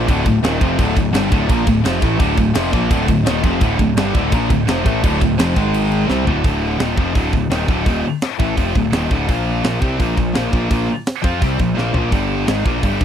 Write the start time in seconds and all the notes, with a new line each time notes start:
0.08 D1 D2 A2 D3, kick, crash
0.25 D1 D2 A2, kick, crash
0.42 D#1 D#2 A#2 D#3, snare, crash
0.59 F1 F2 C3 F3, kick, crash
0.78 D1 D2 A2 D3, kick, crash
0.96 D1 D2 A2, kick, crash
1.13 G1 G2 D3 G3, snare, crash
1.30 D1 D2 A2 D3, kick, crash
1.48 A#1 A#2 F3 A#3, kick, crash
1.66 D1 D2 A2, kick, crash
1.83 F1 F2 C3 F3, snare, crash
2.01 A1 A2 E3 A3, kick, crash
2.19 D1 D2 A2 D3, kick, crash
2.37 D1 D2 A2, kick, crash
2.54 F1 F2 C3 F3, snare, crash
2.72 A#1 A#2 F3 A#3, kick, crash
2.90 D1 D2 A2 D3, kick, crash
3.08 D1 D2 A2, kick, crash
3.25 D#1 D#2 A#2 D#3, snare, crash
3.43 F1 F2 C3 F3, kick, crash
3.60 D1 D2 A2 D3, kick, crash
3.79 D1 D2 A2, kick, crash
3.95 G1 G2 D3 G3, snare, crash
4.14 D1 D2 A2 D3, kick, crash
4.32 A#1 A#2 F3 A#3, kick, crash
4.50 D1 D2 A2, kick, crash
4.67 F1 F2 C3 F3, snare, crash
4.85 A1 A2 E3 A3, kick, crash
5.04 D1 D2 A2 D3, kick, crash
5.21 D1 D2 A2, kick, crash
5.39 F1 F2 C3 F3, snare, crash
5.56 G#1 G#2 D#3 G#3, kick, crash
5.74 crash
5.92 crash
6.09 C2 C3 G3 C4, snare
6.25 D1 D2 A2 D3, floor tom
6.44 D1 D2 A2 D3, kick, open hi-hat
6.78 D#1 D#2 A#2 D#3, snare, open hi-hat
6.96 F1 F2 C3 F3, kick
7.13 D1 D2 A2 D3, kick, open hi-hat
7.32 D1 D2 A2, kick
7.50 D#1 D#2 A#2 D#3, snare, open hi-hat
7.67 D1 D2 A2 D3, kick
7.85 D#1 D#2 A#2 D#3, kick, open hi-hat
8.21 snare, open hi-hat
8.39 A1 A2 E3 A3, kick
8.56 F1 F2 C3 F3, kick, open hi-hat
8.75 D1 D2 A2, kick
8.92 D#1 D#2 A#2 D#3, snare, open hi-hat
9.10 D1 D2 A2 D3, kick
9.27 A#1 A#2 F3 A#3, kick, open hi-hat
9.62 A#1 A#2 F3 A#3, snare, open hi-hat
9.80 C2 C3 G3 C4, kick
9.98 A#1 A#2 F3 A#3, kick, open hi-hat
10.16 A#1 A#2 F3, kick
10.34 A#1 A#2 F3 A#3, snare, open hi-hat
10.51 A#1 A#2 F3 A#3, kick
10.69 A#1 A#2 F3 A#3, kick, open hi-hat
11.06 snare, open hi-hat
11.22 F2 F3 C4 F4, kick
11.41 C2 C3 G3 C4, kick, open hi-hat
11.59 A#1 A#2 F3, kick
11.76 A#1 A#2 F3 A#3, snare
11.93 A#1 A#2 F3 A#3, floor tom
12.11 G1 G2 D3 G3, kick, open hi-hat
12.47 G#1 G#2 D#3 G#3, snare, open hi-hat
12.65 A#1 A#2 F3 A#3, kick
12.82 G1 G2 D3 G3, kick, open hi-hat
13.00 G1 G2 D3, kick